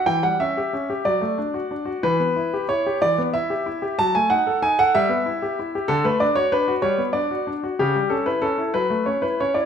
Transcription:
\new Staff \with { instrumentName = "Grand piano" } { \time 6/8 \key e \dorian \tempo 4. = 62 << { g''16 fis''16 e''4 d''4. | b'4 cis''8 d''8 e''4 | a''16 gis''16 fis''8 gis''16 fis''16 e''4. | a'16 b'16 d''16 cis''16 b'8 cis''8 d''4 |
g'8 a'16 b'16 a'8 b'8 cis''16 b'16 cis''16 d''16 | } \\ { e16 g16 cis'16 g'16 cis'16 g'16 fis16 a16 d'16 fis'16 d'16 fis'16 | e16 b16 e'16 g'16 e'16 g'16 e16 b16 e'16 g'16 e'16 g'16 | fis16 a16 dis'16 a'16 dis'16 a'16 g16 b16 e'16 g'16 e'16 g'16 | d16 a16 d'16 fis'16 d'16 fis'16 g16 b16 d'16 fis'16 d'16 fis'16 |
cis16 g16 cis'16 e'16 cis'16 e'16 fis16 a16 cis'16 e'16 cis'16 e'16 | } >> }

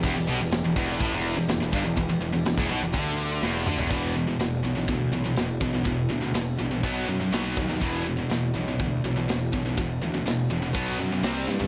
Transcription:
<<
  \new Staff \with { instrumentName = "String section" } { \time 4/4 \key e \minor \tempo 4 = 123 <e g b g'>1~ | <e g b g'>1 | r1 | r1 |
r1 | r1 | }
  \new Staff \with { instrumentName = "Distorted electric guitar" } { \clef bass \time 4/4 \key e \minor e,16 e,16 b,16 e,16 e,16 e,16 e,8 a,16 e,8 e,16 e,16 e,16 g,16 e,16 | e,16 e,16 e,16 e,16 e,16 e,16 b,16 e,16 d4 e,8 d16 e,16 | <e, b, e>8 <e, b,>16 <e, b,>16 <e, b,>8 <e, b,>16 <e, b,>16 <e, b,>8 <e, b,>16 <e, b,>16 <e, b,>8 <e, b,>16 <e, b,>16 | <e, b,>8 <e, b,>16 <e, b,>16 <e, b,>8 <e, b,>16 <e, b,>16 <b, fis b>8 <b, fis>16 <b, fis>16 <b, fis b>8 <b, fis>16 <b, fis>16 |
<e, b, e>8 <e, b,>16 <e, b,>16 <e, b,>8 <e, b,>16 <e, b,>16 <e, b,>8 <e, b,>16 <e, b,>16 <e, b,>8 <e, b,>16 <e, b,>16 | <e, b,>8 <e, b,>16 <e, b,>16 <e, b,>8 <e, b,>16 <e, b,>16 <b, fis b>8 <b, fis>16 <b, fis>16 <c g c'>8 <c g>16 <c g>16 | }
  \new Staff \with { instrumentName = "Distorted electric guitar" } { \clef bass \time 4/4 \key e \minor e,16 e,16 b,16 e,16 e,16 e,16 e,8 a,16 e,8 e,16 e,16 e,16 g,16 e,16 | e,16 e,16 e,16 e,16 e,16 e,16 b,16 e,16 d4 e,8 d16 e,16 | <e, b, e>8 <e, b,>16 <e, b,>16 <e, b,>8 <e, b,>16 <e, b,>16 <e, b,>8 <e, b,>16 <e, b,>16 <e, b,>8 <e, b,>16 <e, b,>16 | <e, b,>8 <e, b,>16 <e, b,>16 <e, b,>8 <e, b,>16 <e, b,>16 <b, fis b>8 <b, fis>16 <b, fis>16 <b, fis b>8 <b, fis>16 <b, fis>16 |
<e, b, e>8 <e, b,>16 <e, b,>16 <e, b,>8 <e, b,>16 <e, b,>16 <e, b,>8 <e, b,>16 <e, b,>16 <e, b,>8 <e, b,>16 <e, b,>16 | <e, b,>8 <e, b,>16 <e, b,>16 <e, b,>8 <e, b,>16 <e, b,>16 <b, fis b>8 <b, fis>16 <b, fis>16 <c g c'>8 <c g>16 <c g>16 | }
  \new Staff \with { instrumentName = "Picked electric bass" } { \clef bass \time 4/4 \key e \minor e,,16 e,,16 b,,16 e,,16 e,,16 e,,16 e,,8 a,,16 e,,8 e,,16 e,,16 e,,16 g,,16 e,,16 | e,,16 e,,16 e,,16 e,,16 e,,16 e,,16 b,,16 e,,16 d,4 e,,8 d,16 e,,16 | e,,4 e,,8 b,,8 d,8 b,,8 e,,8 b,,8 | e,,8 d,8 e,,8 ais,,8 b,,8 fis,8 b,,8 dis,8 |
e,,4 e,,8 b,,8 d,8 b,,8 e,,8 b,,8 | e,,8 d,8 e,,8 e,,8 b,,8 fis,8 c,8 g,8 | }
  \new DrumStaff \with { instrumentName = "Drums" } \drummode { \time 4/4 <cymc bd>8 cymr8 <cymr sn>8 <bd cymr>8 <bd cymr>8 cymr8 <cymr sn>16 sn16 <bd cymr>8 | <bd cymr>8 cymr8 <cymr sn>16 <bd sn>16 cymr8 <bd cymr>8 cymr8 sn8 toml16 tomfh16 | <bd cymr>8 cymr8 <cymr sn>8 cymr8 <bd cymr>8 cymr8 <cymr sn>8 <bd cymr>8 | <bd cymr>8 cymr8 <cymr sn>8 cymr8 <bd cymr>8 cymr8 <cymr sn>8 <bd cymr>8 |
<bd cymr>8 cymr8 <cymr sn>8 cymr8 <bd cymr>8 cymr8 <cymr sn>8 <bd cymr>8 | <bd cymr>8 cymr8 <cymr sn>8 cymr8 <bd cymr>8 cymr8 <cymr sn>8 sn16 tomfh16 | }
>>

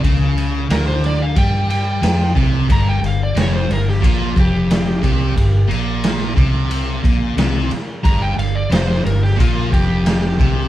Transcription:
<<
  \new Staff \with { instrumentName = "Electric slide guitar" } { \time 4/4 \key g \minor \tempo 4 = 90 r4 bes'16 c''16 d''16 f''16 g''8 g''4 r8 | bes''16 g''16 f''16 d''16 cis''16 c''16 bes'16 g'16 f'8 g'4.~ | g'8 r2. r8 | bes''16 g''16 f''16 d''16 c''16 c''16 bes'16 g'16 f'8 g'4. | }
  \new Staff \with { instrumentName = "Distorted electric guitar" } { \clef bass \time 4/4 \key g \minor cis4 d4 g4 f8 c8 | g,8 g,8 f,8 g,8 bes,8 f,4 c8 | g,8 bes,4 c4 bes,8 c8 r8 | g,8 g,8 f,8 g,8 bes,8 f,4 c8 | }
  \new Staff \with { instrumentName = "Fingered electric bass" } { \clef bass \time 4/4 \key g \minor cis,4 d,4 g,4 f,8 c,8 | g,,8 g,,8 f,,8 g,,8 bes,,8 f,,4 c,8 | g,,8 bes,,4 c,4 bes,,8 c,8 r8 | g,,8 g,,8 f,,8 g,,8 bes,,8 f,,4 c,8 | }
  \new DrumStaff \with { instrumentName = "Drums" } \drummode { \time 4/4 <bd cymr>8 cymr8 <cymr sn>8 cymr8 <bd cymr>8 cymr8 <cymr sn>8 <bd cymr>8 | <bd cymr>8 cymr8 <cymr sn>8 cymr16 sn16 <bd cymr>8 <bd cymr>8 <cymr sn>8 <bd cymr>8 | <bd cymr>8 cymr8 <cymr sn>8 <bd cymr>8 cymr8 <bd cymr>8 <cymr sn>8 cymr8 | <bd cymr>8 cymr8 <cymr sn>16 sn16 cymr16 sn16 <bd cymr>8 <bd cymr>8 <cymr sn>8 <bd cymr>8 | }
>>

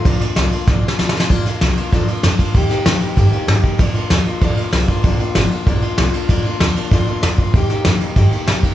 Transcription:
<<
  \new Staff \with { instrumentName = "Steel-string acoustic guitar" } { \time 4/4 \key bes \major \tempo 4 = 192 <bes, f bes d' f'>8 <bes d' f'>8 <f bes d' f'>8 <bes d' f'>8 <bes, f bes d' f'>8 <bes d' f'>8 <f bes d' f'>8 <bes d' f'>8 | <bes, f bes d' f'>8 <bes d' f'>8 <f bes d' f'>8 <bes d' f'>8 <bes, f bes d' f'>8 <bes d' f'>8 <f bes d' f'>8 <bes d' f'>8 | <ees bes ees' g'>8 <bes ees' g'>8 <ees bes ees' g'>8 <bes ees' g'>8 <ees bes ees' g'>8 <bes ees' g'>8 <ees bes ees' g'>8 <bes ees' g'>8 | <bes, f bes d' f'>8 <bes d' f'>8 <f bes d' f'>8 <bes d' f'>8 <bes, f bes d' f'>8 <bes d' f'>8 <f bes d' f'>8 <bes d' f'>8 |
<bes, f bes d' f'>8 <bes d' f'>8 <f bes d' f'>8 <bes d' f'>8 <bes, f bes d' f'>8 <bes d' f'>8 <f bes d' f'>8 <bes d' f'>8 | <bes, f bes d' f'>8 <bes d' f'>8 <f bes d' f'>8 <bes d' f'>8 <bes, f bes d' f'>8 <bes d' f'>8 <f bes d' f'>8 <bes d' f'>8 | <ees bes ees' g'>8 <bes ees' g'>8 <ees bes ees' g'>8 <bes ees' g'>8 <ees bes ees' g'>8 <bes ees' g'>8 <ees bes ees' g'>8 <bes ees' g'>8 | }
  \new Staff \with { instrumentName = "Upright bass" } { \clef bass \time 4/4 \key bes \major bes,,8 r8 c,8 r8 bes,,8 r8 d,8 r8 | r4 c,8 r8 d,8 r8 f,8 r8 | ees,8 r8 bes,8 r8 g,8 r8 aes,8 r8 | bes,8 r8 ees,8 r8 d,8 r8 c,8 r8 |
bes,,8 r8 aes,,8 r8 bes,,8 r8 c,8 r8 | d,8 r8 ees,8 r8 f,8 r8 e,8 r8 | ees,8 r8 f,8 r8 g,8 r8 bes,8 r8 | }
  \new DrumStaff \with { instrumentName = "Drums" } \drummode { \time 4/4 <bd cymr sn>8 <cymr sn>8 <cymr sn>8 cymr8 \tuplet 3/2 { <bd sn>8 r8 sn8 sn8 sn8 sn8 } | <cymc bd>8 <cymr sn>8 <cymr sn>8 cymr8 <bd cymr sn>8 cymr8 <cymr sn>8 <bd cymr>8 | <bd cymr>8 <cymr sn>8 <cymr sn>8 cymr8 <bd cymr sn>8 cymr8 <cymr sn>8 <bd cymr>8 | <bd cymr sn>8 cymr8 <cymr sn>8 cymr8 <bd cymr>8 cymr8 <cymr sn>8 <bd cymr>8 |
<bd cymr>8 cymr8 <cymr sn>8 cymr8 <bd cymr>8 cymr8 <cymr sn>8 cymr8 | <bd cymr sn>8 cymr8 <cymr sn>8 cymr8 <bd cymr sn>8 cymr8 <cymr sn>8 <bd cymr>8 | <bd cymr>8 <cymr sn>8 <cymr sn>8 cymr8 <bd cymr sn>8 cymr8 <cymr sn>8 <bd cymr>8 | }
>>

